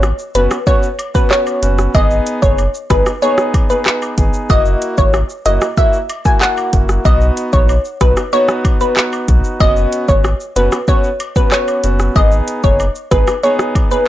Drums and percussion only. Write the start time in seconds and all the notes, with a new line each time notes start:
0.03 cross-stick, high woodblock, shaker
0.19 shaker
0.35 closed hi-hat, cabasa, shaker
0.51 cross-stick, high woodblock, shaker
0.67 kick, shaker
0.83 shaker
0.99 closed hi-hat, cabasa, high woodblock, shaker
1.15 kick, shaker
1.31 cross-stick, clap, shaker
1.47 high woodblock, shaker
1.63 closed hi-hat, cabasa, shaker
1.79 cross-stick, shaker
1.95 kick, high woodblock, shaker
2.11 shaker
2.27 closed hi-hat, cabasa, shaker
2.42 kick, shaker
2.58 high woodblock, shaker
2.74 shaker
2.90 kick, cross-stick, closed hi-hat, cabasa, shaker
3.06 cross-stick, high woodblock, shaker
3.22 shaker
3.38 cross-stick, shaker
3.54 kick, closed hi-hat, cabasa, high woodblock, shaker
3.70 shaker
3.86 cross-stick, clap, shaker
4.02 high woodblock, shaker
4.18 kick, closed hi-hat, cabasa, shaker
4.34 shaker
4.50 kick, high woodblock, shaker
4.66 shaker
4.82 closed hi-hat, cabasa, shaker
4.98 kick, shaker
5.14 cross-stick, high woodblock, shaker
5.30 shaker
5.46 closed hi-hat, cabasa, shaker
5.61 cross-stick, high woodblock, shaker
5.77 kick, shaker
5.93 shaker
6.10 closed hi-hat, cabasa, high woodblock, shaker
6.25 kick, shaker
6.41 cross-stick, clap, shaker
6.57 high woodblock, shaker
6.73 kick, closed hi-hat, cabasa, shaker
6.89 cross-stick, shaker
7.05 kick, high woodblock, shaker
7.21 shaker
7.37 closed hi-hat, cabasa, shaker
7.53 kick, shaker
7.69 high woodblock, shaker
7.85 shaker
8.01 kick, cross-stick, closed hi-hat, cabasa, shaker
8.17 cross-stick, high woodblock, shaker
8.33 shaker
8.49 cross-stick, shaker
8.65 kick, closed hi-hat, cabasa, high woodblock, shaker
8.81 shaker
8.97 cross-stick, clap, shaker
9.13 high woodblock, shaker
9.28 kick, closed hi-hat, cabasa, shaker
9.44 shaker
9.60 kick, high woodblock, shaker
9.76 shaker
9.92 closed hi-hat, cabasa, shaker
10.08 kick, shaker
10.24 cross-stick, high woodblock, shaker
10.40 shaker
10.56 closed hi-hat, cabasa, shaker
10.72 cross-stick, high woodblock, shaker
10.88 kick, shaker
11.04 shaker
11.20 closed hi-hat, cabasa, high woodblock, shaker
11.36 kick, shaker
11.52 cross-stick, clap, shaker
11.68 high woodblock, shaker
11.84 closed hi-hat, cabasa, shaker
12.00 cross-stick, shaker
12.16 kick, high woodblock, shaker
12.32 shaker
12.48 closed hi-hat, cabasa, shaker
12.64 kick, shaker
12.80 high woodblock, shaker
12.95 shaker
13.11 kick, cross-stick, closed hi-hat, cabasa, shaker
13.27 cross-stick, high woodblock, shaker
13.43 shaker
13.59 cross-stick, shaker
13.75 kick, closed hi-hat, cabasa, high woodblock, shaker
13.91 shaker